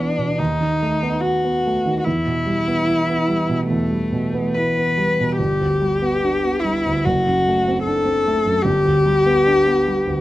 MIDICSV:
0, 0, Header, 1, 3, 480
1, 0, Start_track
1, 0, Key_signature, 1, "minor"
1, 0, Tempo, 824176
1, 1195, Time_signature, 4, 2, 24, 8
1, 2144, Tempo, 869565
1, 2624, Tempo, 831025
1, 4064, Tempo, 806452
1, 5948, End_track
2, 0, Start_track
2, 0, Title_t, "Cello"
2, 0, Program_c, 0, 42
2, 0, Note_on_c, 0, 62, 47
2, 226, Note_on_c, 0, 63, 53
2, 235, Note_off_c, 0, 62, 0
2, 704, Note_on_c, 0, 66, 49
2, 713, Note_off_c, 0, 63, 0
2, 1151, Note_off_c, 0, 66, 0
2, 1158, Note_on_c, 0, 66, 41
2, 1190, Note_on_c, 0, 64, 58
2, 1198, Note_off_c, 0, 66, 0
2, 2135, Note_off_c, 0, 64, 0
2, 2139, Note_on_c, 0, 57, 56
2, 2621, Note_on_c, 0, 71, 50
2, 2630, Note_off_c, 0, 57, 0
2, 3095, Note_off_c, 0, 71, 0
2, 3098, Note_on_c, 0, 67, 62
2, 3807, Note_on_c, 0, 64, 54
2, 3816, Note_off_c, 0, 67, 0
2, 4066, Note_on_c, 0, 66, 50
2, 4074, Note_off_c, 0, 64, 0
2, 4530, Note_off_c, 0, 66, 0
2, 4533, Note_on_c, 0, 69, 60
2, 5007, Note_on_c, 0, 67, 72
2, 5016, Note_off_c, 0, 69, 0
2, 5948, Note_off_c, 0, 67, 0
2, 5948, End_track
3, 0, Start_track
3, 0, Title_t, "Grand piano"
3, 0, Program_c, 1, 0
3, 0, Control_c, 1, 64, 127
3, 0, Note_on_c, 1, 40, 36
3, 0, Note_on_c, 1, 47, 29
3, 0, Note_on_c, 1, 59, 30
3, 0, Note_on_c, 1, 64, 30
3, 0, Note_on_c, 1, 67, 32
3, 108, Note_off_c, 1, 47, 0
3, 108, Note_on_c, 1, 47, 31
3, 177, Note_off_c, 1, 59, 0
3, 200, Note_off_c, 1, 40, 0
3, 228, Note_off_c, 1, 47, 0
3, 230, Note_on_c, 1, 39, 38
3, 238, Control_c, 1, 64, 0
3, 239, Note_off_c, 1, 67, 0
3, 243, Note_off_c, 1, 64, 0
3, 344, Control_c, 1, 64, 127
3, 352, Note_on_c, 1, 51, 29
3, 481, Note_on_c, 1, 57, 29
3, 545, Note_off_c, 1, 51, 0
3, 598, Note_on_c, 1, 59, 30
3, 669, Note_off_c, 1, 57, 0
3, 714, Note_on_c, 1, 66, 30
3, 788, Note_off_c, 1, 59, 0
3, 843, Note_on_c, 1, 59, 30
3, 906, Note_off_c, 1, 66, 0
3, 970, Note_on_c, 1, 57, 31
3, 1031, Note_off_c, 1, 59, 0
3, 1081, Note_on_c, 1, 51, 31
3, 1155, Note_off_c, 1, 57, 0
3, 1173, Note_off_c, 1, 39, 0
3, 1198, Note_off_c, 1, 51, 0
3, 1205, Note_on_c, 1, 40, 36
3, 1206, Control_c, 1, 64, 0
3, 1292, Control_c, 1, 64, 127
3, 1318, Note_on_c, 1, 47, 30
3, 1435, Note_on_c, 1, 55, 31
3, 1506, Note_off_c, 1, 47, 0
3, 1560, Note_on_c, 1, 59, 29
3, 1624, Note_off_c, 1, 55, 0
3, 1671, Note_on_c, 1, 64, 33
3, 1744, Note_off_c, 1, 59, 0
3, 1804, Note_on_c, 1, 59, 29
3, 1859, Note_off_c, 1, 64, 0
3, 1910, Note_on_c, 1, 55, 32
3, 1985, Note_off_c, 1, 59, 0
3, 2034, Note_on_c, 1, 47, 32
3, 2098, Note_off_c, 1, 55, 0
3, 2125, Note_off_c, 1, 40, 0
3, 2156, Note_on_c, 1, 40, 36
3, 2218, Note_off_c, 1, 47, 0
3, 2270, Note_on_c, 1, 55, 29
3, 2388, Note_on_c, 1, 47, 33
3, 2459, Note_off_c, 1, 55, 0
3, 2508, Note_on_c, 1, 59, 32
3, 2579, Note_off_c, 1, 47, 0
3, 2631, Note_on_c, 1, 64, 32
3, 2701, Note_off_c, 1, 59, 0
3, 2757, Note_on_c, 1, 59, 32
3, 2824, Note_off_c, 1, 64, 0
3, 2870, Note_on_c, 1, 55, 34
3, 2944, Note_off_c, 1, 59, 0
3, 3001, Note_on_c, 1, 47, 30
3, 3059, Note_off_c, 1, 55, 0
3, 3089, Note_off_c, 1, 40, 0
3, 3111, Note_on_c, 1, 31, 40
3, 3112, Note_off_c, 1, 47, 0
3, 3115, Control_c, 1, 64, 0
3, 3226, Control_c, 1, 64, 127
3, 3236, Note_on_c, 1, 38, 32
3, 3350, Note_on_c, 1, 55, 34
3, 3420, Note_off_c, 1, 38, 0
3, 3472, Note_on_c, 1, 59, 31
3, 3537, Note_off_c, 1, 55, 0
3, 3596, Note_on_c, 1, 62, 34
3, 3660, Note_off_c, 1, 59, 0
3, 3715, Note_on_c, 1, 59, 29
3, 3782, Note_off_c, 1, 62, 0
3, 3832, Note_on_c, 1, 55, 34
3, 3902, Note_off_c, 1, 59, 0
3, 3959, Note_on_c, 1, 38, 35
3, 4020, Note_off_c, 1, 55, 0
3, 4043, Note_off_c, 1, 31, 0
3, 4072, Note_off_c, 1, 38, 0
3, 4072, Note_on_c, 1, 30, 44
3, 4073, Control_c, 1, 64, 0
3, 4171, Control_c, 1, 64, 127
3, 4197, Note_on_c, 1, 42, 32
3, 4321, Note_on_c, 1, 57, 33
3, 4385, Note_off_c, 1, 42, 0
3, 4442, Note_on_c, 1, 60, 34
3, 4507, Note_off_c, 1, 57, 0
3, 4555, Note_on_c, 1, 62, 36
3, 4626, Note_off_c, 1, 60, 0
3, 4664, Note_on_c, 1, 60, 35
3, 4742, Note_off_c, 1, 62, 0
3, 4795, Note_on_c, 1, 57, 35
3, 4857, Note_off_c, 1, 60, 0
3, 4906, Note_on_c, 1, 42, 34
3, 4982, Note_off_c, 1, 57, 0
3, 5006, Note_off_c, 1, 30, 0
3, 5020, Note_on_c, 1, 31, 43
3, 5026, Note_off_c, 1, 42, 0
3, 5036, Control_c, 1, 64, 0
3, 5139, Note_on_c, 1, 38, 36
3, 5141, Control_c, 1, 64, 127
3, 5260, Note_on_c, 1, 55, 36
3, 5334, Note_off_c, 1, 38, 0
3, 5383, Note_on_c, 1, 59, 37
3, 5454, Note_off_c, 1, 55, 0
3, 5504, Note_on_c, 1, 62, 39
3, 5576, Note_off_c, 1, 59, 0
3, 5624, Note_on_c, 1, 59, 33
3, 5696, Note_off_c, 1, 62, 0
3, 5749, Note_on_c, 1, 55, 34
3, 5816, Note_off_c, 1, 59, 0
3, 5863, Note_on_c, 1, 38, 35
3, 5939, Note_off_c, 1, 55, 0
3, 5948, Note_off_c, 1, 31, 0
3, 5948, Note_off_c, 1, 38, 0
3, 5948, End_track
0, 0, End_of_file